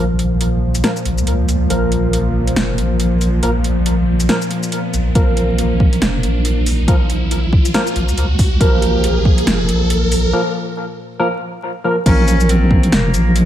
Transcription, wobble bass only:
0.00 0.83 A#1 loud
1.05 1.20 A#1 loud
1.18 1.69 C#2 medium
1.70 2.55 A#1 loud
2.57 2.80 F1 medium
2.78 3.42 A#1 medium
3.43 4.28 A#1 medium
4.94 5.14 A#1 medium
5.15 6.01 A#1 medium
6.02 6.25 F1 medium
6.23 6.87 A#1 medium
6.88 7.73 A#1 medium
7.96 8.10 A#1 loud
8.09 8.60 C#2 medium
8.61 9.46 A#1 loud
9.47 9.70 F1 medium
9.69 10.32 A#1 medium
12.06 12.91 A#1 loud
12.92 13.16 F1 medium
13.14 13.45 A#1 medium

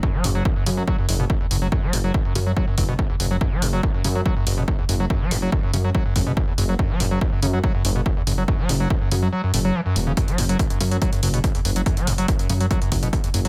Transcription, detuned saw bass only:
0.24 0.42 F#1 loud
0.66 0.84 F#2 medium
1.09 1.26 F#1 loud
1.51 1.69 F#1 medium
1.93 2.11 F#1 loud
2.35 2.53 F#2 medium
2.78 2.95 F#1 loud
3.20 3.38 F#1 medium
3.62 3.80 F#1 medium
4.04 4.22 F#2 medium
4.47 4.64 F#1 loud
4.89 5.07 F#1 medium
5.31 5.49 F#1 medium
5.74 5.91 F#2 medium
6.16 6.33 F#1 loud
6.58 6.76 F#1 loud
7.00 7.18 F#1 loud
7.42 7.60 F#2 medium
7.85 8.02 F#1 loud
8.27 8.45 F#1 medium
8.69 8.87 F#1 loud
9.11 9.29 F#2 medium
9.54 9.71 F#1 medium
9.96 10.14 E1 loud
10.38 10.56 F#1 medium
10.81 10.98 F#2 medium
11.23 11.40 F#1 loud
11.65 11.83 F#1 medium
12.07 12.25 F#1 loud
12.50 12.67 F#2 medium
12.92 13.09 F#1 loud
13.34 13.48 F#1 medium

